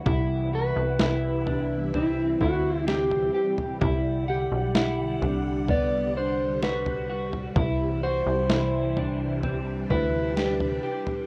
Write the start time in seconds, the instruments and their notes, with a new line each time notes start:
0.06 analog synth bass C2, string machine C3 E3 G3 B3 E4, clean electric guitar E4, kick, floor tom
0.53 clean electric guitar F#4, electric slide guitar B4
0.76 analog synth bass C2
0.99 analog synth bass C2, clean electric guitar E4, snare
1.46 clean electric guitar D4, floor tom
1.94 string machine C4, clean electric guitar C4, electric slide guitar E4, floor tom
2.41 analog synth bass D2, clean electric guitar E4, electric slide guitar F#4, kick
2.87 clean electric guitar G4, electric slide guitar G4, snare
3.11 floor tom
3.34 clean electric guitar G4
3.58 floor tom
3.80 analog synth bass C2, string machine D3 F#5, clean electric guitar E4, kick, floor tom
4.28 electric slide guitar G4, clean electric guitar F#5
4.52 analog synth bass B1
4.75 clean electric guitar E4, snare
5.22 analog synth bass C2, clean electric guitar D4, floor tom
5.68 clean electric guitar B3, electric slide guitar D5, kick, floor tom
6.16 clean electric guitar D4, electric slide guitar C5
6.63 clean electric guitar F#4, electric slide guitar B4, snare
6.86 floor tom
7.10 clean electric guitar F#4
7.33 floor tom
7.56 analog synth bass C2, string machine C3 E3 E4, clean electric guitar E4, kick, floor tom
8.03 clean electric guitar F#4, electric slide guitar C5
8.26 analog synth bass C2
8.50 analog synth bass C2, clean electric guitar E4, snare
8.97 clean electric guitar D4, floor tom
9.42 clean electric guitar C4, string machine D4, floor tom
9.90 analog synth bass D2, clean electric guitar E4, electric slide guitar B4, kick
10.36 clean electric guitar G4, snare
10.60 floor tom
10.83 clean electric guitar G4
11.07 floor tom